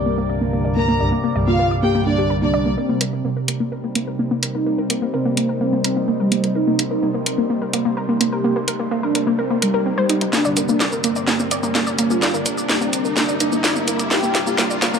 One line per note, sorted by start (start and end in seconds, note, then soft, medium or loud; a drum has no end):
0.00 0.97 C2 medium
0.00 0.97 G2 medium
0.00 2.73 C3 medium
0.00 2.76 C3 medium
0.00 0.97 D3 medium
0.00 0.97 G3 medium
0.00 2.73 G3 medium
0.00 2.76 G3 medium
0.00 2.73 A#3 medium
0.00 2.73 D4 medium
0.00 2.73 A#4 medium
0.00 2.73 D5 medium
0.06 0.16 A#3 medium
0.18 0.24 A#3 loud
0.29 0.33 D5 medium
0.41 0.51 A#3 loud
0.53 0.60 A#3 loud
0.65 0.69 D5 medium
0.77 0.87 A#3 loud
0.77 1.03 A#4 medium
0.77 1.03 A#5 medium
0.88 0.95 A#3 loud
1.00 1.11 C2 medium
1.00 1.11 G2 medium
1.00 1.11 D3 medium
1.00 1.11 G3 medium
1.00 1.04 D5 medium
1.12 1.22 A#3 medium
1.24 1.30 A#3 loud
1.36 2.76 C2 medium
1.36 2.76 G2 medium
1.36 2.76 D3 medium
1.36 2.76 G3 medium
1.36 1.40 D5 medium
1.47 1.57 A#3 loud
1.47 1.74 F4 loud
1.47 1.74 F5 medium
1.59 1.66 A#3 loud
1.71 1.75 D5 medium
1.83 1.93 A#3 loud
1.83 2.00 G4 medium
1.83 2.00 G5 medium
1.95 2.01 A#3 loud
2.06 2.13 A#3 medium
2.06 2.33 D4 loud
2.06 2.33 D5 medium
2.18 2.28 G4 medium
2.30 2.40 A#4 medium
2.42 2.52 A#3 medium
2.42 2.68 D4 medium
2.42 2.68 D5 medium
2.54 2.58 D5 loud
2.66 2.72 A#3 medium
2.77 14.99 C3 medium
2.77 14.99 G3 medium
2.77 2.88 A#3 loud
2.77 3.04 C4 loud
2.77 10.29 C4 medium
2.77 10.29 D#4 medium
2.77 14.99 A#4 medium
2.77 10.29 C5 medium
2.77 riser medium
2.89 3.22 C3 medium
2.89 3.22 G3 medium
2.89 2.96 A#3 loud
2.89 3.22 C4 medium
3.01 3.05 A#4 medium
3.01 closed hi-hat loud
3.13 3.23 A#3 loud
3.13 3.30 C4 medium
3.25 4.75 C3 medium
3.25 4.75 G3 medium
3.25 3.31 A#3 loud
3.25 4.75 C4 medium
3.37 3.40 A#4 medium
3.48 3.58 A#3 loud
3.48 closed hi-hat loud
3.60 3.67 A#3 loud
3.72 3.76 A#4 medium
3.84 3.94 A#3 loud
3.95 4.02 A#3 loud
3.95 closed hi-hat loud
4.07 4.11 A#4 medium
4.19 4.29 A#3 loud
4.31 4.38 A#3 loud
4.43 4.47 A#4 medium
4.43 closed hi-hat loud
4.55 4.65 A#3 loud
4.55 4.81 D#4 medium
4.66 4.73 A#3 loud
4.78 4.89 C3 medium
4.78 4.89 G3 medium
4.78 4.89 C4 medium
4.78 4.82 A#4 medium
4.90 5.00 A#3 loud
4.90 closed hi-hat loud
5.02 5.09 A#3 loud
5.14 6.64 C3 medium
5.14 6.64 G3 medium
5.14 6.64 C4 loud
5.14 5.18 A#4 medium
5.25 5.35 A#3 loud
5.25 5.52 A#3 medium
5.37 5.44 A#3 loud
5.37 closed hi-hat loud
5.49 5.53 A#4 medium
5.61 5.71 A#3 loud
5.61 5.78 C4 medium
5.73 5.79 A#3 loud
5.84 6.11 C4 loud
5.84 5.89 A#4 medium
5.84 closed hi-hat loud
5.96 6.06 A#3 loud
6.08 6.15 A#3 loud
6.20 6.46 G3 medium
6.20 6.24 A#4 medium
6.32 6.42 A#3 loud
6.32 closed hi-hat loud
6.44 6.50 A#3 loud
6.44 closed hi-hat medium
6.55 6.82 D#4 loud
6.55 6.59 A#4 medium
6.67 7.00 C3 medium
6.67 7.00 G3 medium
6.67 6.77 A#3 loud
6.67 7.00 C4 medium
6.79 6.86 A#3 loud
6.79 closed hi-hat loud
6.91 7.08 D#4 medium
6.91 6.95 A#4 medium
7.03 8.53 C3 medium
7.03 8.53 G3 medium
7.03 7.13 A#3 loud
7.03 8.53 C4 medium
7.14 7.21 A#3 loud
7.26 7.30 A#4 medium
7.26 closed hi-hat loud
7.38 7.48 A#3 loud
7.50 7.57 A#3 loud
7.62 7.66 A#4 medium
7.73 7.83 A#3 loud
7.73 closed hi-hat loud
7.85 7.92 A#3 loud
7.97 8.01 A#4 medium
8.09 8.19 A#3 loud
8.21 8.27 A#3 loud
8.21 closed hi-hat loud
8.33 8.59 G4 medium
8.33 8.37 A#4 medium
8.44 8.54 A#3 loud
8.56 8.63 A#3 loud
8.68 8.72 A#4 medium
8.68 closed hi-hat loud
8.80 8.90 A#3 loud
8.91 8.98 A#3 loud
9.03 9.30 D4 loud
9.03 9.07 A#4 medium
9.15 9.25 A#3 loud
9.15 closed hi-hat loud
9.27 9.34 A#3 loud
9.39 9.56 C4 medium
9.39 9.43 A#4 medium
9.50 9.61 A#3 loud
9.62 9.89 G3 loud
9.62 9.72 A#4 medium
9.62 closed hi-hat loud
9.74 9.78 A#4 loud
9.86 9.90 C4 medium
9.98 10.24 G3 medium
9.98 10.04 C5 loud
10.09 10.14 D#4 loud
10.09 closed hi-hat loud
10.21 10.25 D#4 medium
10.21 closed hi-hat medium
10.33 14.99 C3 medium
10.33 10.40 A#3 loud
10.33 14.99 A#3 medium
10.33 10.59 D4 loud
10.33 14.99 D4 medium
10.33 14.99 D5 medium
10.33 snare soft
10.33 shaker medium
10.45 10.78 G2 medium
10.45 10.78 D3 medium
10.45 10.78 G3 medium
10.45 10.49 D5 medium
10.45 shaker soft
10.57 10.67 A#3 medium
10.57 closed hi-hat loud
10.57 shaker medium
10.69 10.75 A#3 loud
10.69 10.86 D4 medium
10.69 shaker soft
10.80 12.31 G2 medium
10.80 12.31 D3 medium
10.80 12.31 G3 medium
10.80 10.85 D5 medium
10.80 snare medium
10.80 shaker medium
10.92 11.02 A#3 loud
10.92 shaker soft
11.04 11.11 A#3 loud
11.04 closed hi-hat loud
11.04 shaker medium
11.16 11.20 D5 medium
11.16 shaker soft
11.28 11.38 A#3 loud
11.28 snare medium
11.28 shaker medium
11.39 11.46 A#3 loud
11.39 shaker soft
11.51 11.55 D5 medium
11.51 closed hi-hat loud
11.51 shaker medium
11.63 11.73 A#3 loud
11.63 shaker soft
11.75 11.82 A#3 loud
11.75 snare medium
11.75 shaker medium
11.87 11.91 D5 medium
11.87 shaker soft
11.99 12.09 A#3 loud
11.99 closed hi-hat loud
11.99 shaker medium
12.10 12.17 A#3 loud
12.10 12.37 F4 medium
12.10 shaker soft
12.22 12.26 D5 medium
12.22 snare medium
12.22 shaker medium
12.34 12.45 G2 medium
12.34 12.45 D3 medium
12.34 12.45 G3 medium
12.34 12.44 A#3 loud
12.34 shaker soft
12.46 12.52 A#3 loud
12.46 closed hi-hat loud
12.46 shaker medium
12.57 12.62 D5 medium
12.57 shaker soft
12.69 14.20 G2 medium
12.69 14.20 D3 medium
12.69 14.20 G3 loud
12.69 12.79 A#3 loud
12.69 snare medium
12.69 shaker medium
12.81 12.88 A#3 loud
12.81 13.07 C4 loud
12.81 shaker soft
12.93 12.97 D5 medium
12.93 closed hi-hat loud
12.93 shaker medium
13.05 13.15 A#3 loud
13.05 shaker soft
13.17 13.23 A#3 loud
13.17 13.34 D4 medium
13.17 snare medium
13.17 shaker medium
13.29 13.33 D5 medium
13.29 shaker soft
13.40 13.50 A#3 loud
13.40 13.66 D4 loud
13.40 closed hi-hat loud
13.40 shaker medium
13.52 13.59 A#3 loud
13.52 shaker soft
13.64 13.68 D5 medium
13.64 snare medium
13.64 shaker medium
13.76 13.86 A#3 loud
13.76 14.02 A#3 medium
13.76 shaker soft
13.88 13.94 A#3 loud
13.88 closed hi-hat loud
13.88 shaker medium
13.99 14.03 D5 medium
13.99 closed hi-hat medium
13.99 shaker soft
14.11 14.21 A#3 loud
14.11 14.37 G4 loud
14.11 snare medium
14.11 shaker medium
14.23 14.56 G2 medium
14.23 14.56 D3 medium
14.23 14.56 G3 medium
14.23 14.30 A#3 loud
14.23 shaker soft
14.35 14.39 D5 medium
14.35 snare medium
14.35 closed hi-hat loud
14.35 shaker medium
14.47 14.57 A#3 loud
14.47 14.64 G4 medium
14.47 shaker soft
14.58 14.99 G2 medium
14.58 14.99 D3 medium
14.58 14.99 G3 medium
14.58 14.65 A#3 loud
14.58 snare medium
14.58 shaker medium
14.70 14.74 D5 medium
14.70 shaker soft
14.82 14.92 A#3 loud
14.82 snare medium
14.82 closed hi-hat loud
14.82 shaker medium
14.94 14.99 A#3 loud
14.94 shaker soft